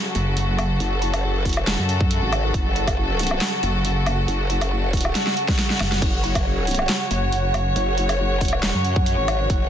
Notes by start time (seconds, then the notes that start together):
Already playing: C#3 F#3 F#4 A4 F#5
0.15 F#1, closed hi-hat
0.37 closed hi-hat
0.59 closed hi-hat, low woodblock
0.80 F#1, closed hi-hat
1.02 closed hi-hat
1.14 closed hi-hat, low woodblock
1.40 F1
1.45 kick, closed hi-hat, open hi-hat
1.53 closed hi-hat
1.57 low woodblock
1.67 E1, snare, clap, closed hi-hat
1.79 F#2
1.89 closed hi-hat
2.01 kick
2.11 closed hi-hat
2.22 G#1
2.33 closed hi-hat, low woodblock
2.54 F#1, kick, closed hi-hat
2.76 closed hi-hat
2.88 kick, closed hi-hat, low woodblock
3.19 closed hi-hat, open hi-hat
3.27 closed hi-hat
3.31 low woodblock
3.41 snare, clap, closed hi-hat
3.63 F#1, closed hi-hat
3.85 closed hi-hat
4.06 closed hi-hat, low woodblock
4.28 F#1, closed hi-hat
4.50 closed hi-hat
4.61 closed hi-hat, low woodblock
4.93 kick, closed hi-hat, open hi-hat
5.01 closed hi-hat
5.05 low woodblock
5.15 snare, closed hi-hat
5.27 snare
5.37 closed hi-hat
5.48 kick, snare
5.59 snare, closed hi-hat
5.70 snare
5.80 F#1, snare, closed hi-hat, low woodblock
5.92 snare, closed hi-hat
6.02 F#1 C#5, kick, closed hi-hat, crash
6.24 closed hi-hat
6.35 kick, closed hi-hat, low woodblock
6.67 closed hi-hat, open hi-hat
6.75 closed hi-hat
6.79 low woodblock
6.89 snare, clap, closed hi-hat
7.11 F#1, closed hi-hat
7.33 closed hi-hat
7.54 closed hi-hat, low woodblock
7.76 F#1, closed hi-hat
7.98 closed hi-hat
8.09 closed hi-hat, low woodblock
8.36 F1
8.41 kick, closed hi-hat, open hi-hat
8.48 closed hi-hat
8.53 low woodblock
8.63 E1, snare, clap, closed hi-hat
8.74 F#2
8.85 closed hi-hat
8.96 kick
9.06 closed hi-hat
9.18 G#1
9.28 closed hi-hat, low woodblock
9.50 F#1, kick, closed hi-hat